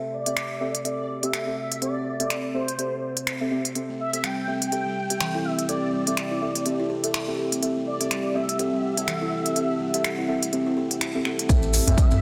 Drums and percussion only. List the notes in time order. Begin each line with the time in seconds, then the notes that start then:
0.26 closed hi-hat
0.37 finger snap, closed hi-hat
0.75 closed hi-hat
0.85 closed hi-hat
1.23 closed hi-hat
1.33 finger snap, closed hi-hat
1.72 closed hi-hat
1.82 closed hi-hat
2.20 closed hi-hat
2.30 finger snap, closed hi-hat
2.68 closed hi-hat
2.79 closed hi-hat
3.17 closed hi-hat
3.27 finger snap, closed hi-hat
3.65 closed hi-hat
3.75 closed hi-hat
4.13 closed hi-hat
4.24 finger snap, closed hi-hat
4.62 closed hi-hat
4.72 closed hi-hat
5.10 closed hi-hat
5.20 finger snap, closed hi-hat
5.59 closed hi-hat
5.69 closed hi-hat
6.07 closed hi-hat
6.17 finger snap, closed hi-hat
6.55 closed hi-hat
6.66 closed hi-hat
7.04 closed hi-hat
7.14 finger snap, closed hi-hat
7.52 closed hi-hat
7.63 closed hi-hat
8.01 closed hi-hat
8.11 finger snap, closed hi-hat
8.49 closed hi-hat
8.59 closed hi-hat
8.97 closed hi-hat
9.08 finger snap, closed hi-hat
9.46 closed hi-hat
9.56 closed hi-hat
9.94 closed hi-hat
10.04 finger snap, closed hi-hat
10.43 closed hi-hat
10.53 closed hi-hat
10.91 closed hi-hat
11.01 finger snap, closed hi-hat
11.25 finger snap
11.39 closed hi-hat
11.49 kick, closed hi-hat, maracas
11.63 maracas
11.73 open hi-hat, djembe tone, maracas
11.87 closed hi-hat, mid tom, djembe bass, maracas
11.98 kick, closed hi-hat, maracas
12.11 mid tom, djembe tone, maracas